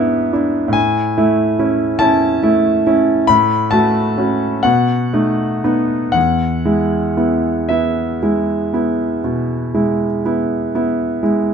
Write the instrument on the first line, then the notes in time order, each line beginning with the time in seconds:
grand piano
Already playing: G#2 B3 D4 E4 E5
0.33 D4 E4
0.68 A2
0.73 G#5
1.18 A3 E4
1.59 C#4 E4
1.99 C#4 E4 A5
2.43 A3 E4
2.87 C#4 E4
3.27 A2 B5
3.71 A3 F#4 A5
4.18 C#4 F#4
4.63 B2 F#5
5.13 A3 D#4
5.64 B3 D#4
6.12 E2 F#5
6.65 G#3 E4
7.17 B3 E4
7.69 B3 E4 E5
8.22 G#3 E4
8.73 B3 E4
9.24 B2
9.74 G#3 E4
10.25 B3 E4
10.75 B3 E4
11.23 G#3 E4